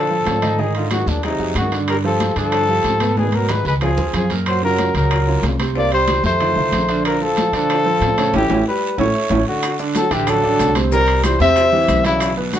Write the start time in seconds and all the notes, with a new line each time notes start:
Already playing: A#2 F3 A4
0.10 F3 F4 A4, high conga
0.26 G#2, high bongo, low bongo, high conga, high timbale, low timbale, short guiro
0.42 D#3 D#4 D#5, high conga, high timbale, short guiro
0.59 D#3 D#4 G#4 D#5, high bongo, high conga, long guiro
0.75 D3 F4, high bongo, high conga, high timbale
0.91 D#3 F#3 F#4 G#4, high bongo, high conga, high timbale, short guiro
1.06 D#2 A#2 D4, high conga, short guiro
1.23 C3 F#3 D#4 F#4 G#4, high bongo, high conga, high timbale, long guiro
1.39 F2 F#3 F#4 G#4, high conga
1.55 G2 D#3 F#4, high bongo, low bongo, high conga, high timbale, short guiro
1.72 D3 D4 D5, high bongo, high conga, high timbale, short guiro
1.88 G3 A#4, high bongo, high conga, high timbale, long guiro
2.04 F3 F4 G4 A4, high bongo, high conga
2.20 high bongo, high conga, high timbale, short guiro
2.36 G2 D3 F3 D4 A4 D5, high bongo, high conga, high timbale, short guiro
2.52 high bongo, high conga, high timbale, long guiro
2.69 F3 F4 G4, high conga
2.84 G#2, high bongo, low bongo, high conga, high timbale, short guiro
3.00 B2 B3 B4, high bongo, high conga, high timbale, short guiro
3.17 B2 D#3 B3 G#4 B4, high bongo, high conga, long guiro
3.32 F#3 A#4, high bongo, high conga, high timbale
3.49 D#3 G#3 D#4 F#4 B4, high bongo, low conga, high timbale, short guiro
3.65 C#2 G#3 B4, high bongo, low conga, short guiro
3.81 F3 F4 G#4, high bongo, low conga, high timbale, long guiro
3.97 D#2 F3 F4 G#4, low conga
4.13 F#2 F3 G#4, high bongo, low bongo, low conga, high timbale, short guiro
4.30 A#2 A#3 A#4, high bongo, low conga, high timbale, short guiro
4.46 F#3 C5, high bongo, high conga, high timbale, long guiro
4.62 C#3 F#3 C#4 F4 A#4, high bongo, high conga
4.78 high bongo, high conga, high timbale, short guiro
4.94 C#2 A#2 F#3 A#3 A#4, high bongo, high timbale, short guiro
5.11 high bongo, high conga, high timbale, long guiro
5.27 C#3 C#4 F4, high conga
5.42 C2, high bongo, low bongo, high conga, high timbale, low timbale, short guiro
5.59 C3 C4 C5, high bongo, high conga, high timbale, short guiro
5.75 C3 A#3 C4 C5 D5, high bongo, high conga, long guiro
5.91 G3 C5, high bongo, high conga, high timbale
6.08 D#3 D#4 G4, high bongo, high conga, high timbale, short guiro
6.24 F2 A3 C5, high bongo, high conga, short guiro
6.40 D#3 D#4 F4, high bongo, high conga, high timbale, long guiro
6.56 C2 D#3 D#4 F4, high conga
6.72 A#1, high bongo, low bongo, high conga, high timbale, low timbale, short guiro
6.89 D3 D4 D5, high bongo, high timbale, short guiro
7.05 F3 A#4, high bongo, high conga, high timbale, long guiro
7.21 F3 F4 A4, high conga
7.37 high bongo, high conga, high timbale, short guiro
7.53 A#2 D3 F3 D4 A4 D5, high bongo, high timbale, short guiro
7.69 high bongo, high conga, high timbale, long guiro
7.85 F3 F4 A4, high conga
8.01 A2, high bongo, low bongo, high conga, high timbale, low timbale, short guiro
8.18 C#3 C#4 C#5, high bongo, high conga, high timbale, short guiro
8.33 A1 E3 A3 C#4 E4 G4, high bongo, high conga, high timbale, long guiro
8.49 A1 A3 C#4 E4, high bongo, high conga, high timbale, long guiro
8.67 G3 B4
8.98 A1 A3 C#4 E4 C#5, high bongo, high conga, high timbale, long guiro
9.30 A1 A3 C#4 E4, high bongo, high conga, high timbale, long guiro
9.48 D3 F#4
9.63 high bongo, high conga, high timbale, long guiro, maracas
9.79 D3 D4 D5, high bongo, high conga, maracas
9.95 F#3 F#4 A4, high bongo, high conga, high timbale, short guiro, maracas
10.11 A1 D3 E3 D4 G4 D5, high bongo, high timbale, short guiro, maracas
10.27 F#3 A4, high bongo, high conga, low conga, high timbale, long guiro, maracas
10.43 D3 D4 D5, high conga, low conga
10.59 C2, high bongo, low bongo, high conga, high timbale, low timbale, short guiro, maracas
10.75 C3 C4 C5, high bongo, high conga, high timbale, short guiro, maracas
10.91 C3 G3 C4 A#4 C5, high bongo, long guiro, maracas
11.08 high bongo, high conga, high timbale
11.24 E3 G3 E4 G4 C5, high bongo, high conga, high timbale, short guiro, maracas
11.40 E2 C3 C4 C5 E5, high conga, short guiro, maracas
11.56 high bongo, high conga, high timbale, long guiro, maracas
11.72 E3 E4 G4, high conga
11.88 B1, high bongo, low bongo, high conga, high timbale, short guiro, maracas
12.04 C#3 E3 E4 F#4 D5, high bongo, high conga, high timbale, short guiro, maracas
12.20 high bongo, high conga, high timbale, long guiro, maracas
12.37 B2 B3 B4, high bongo, high conga
12.53 D3 D4 F#4, high bongo, high conga, high timbale, short guiro, maracas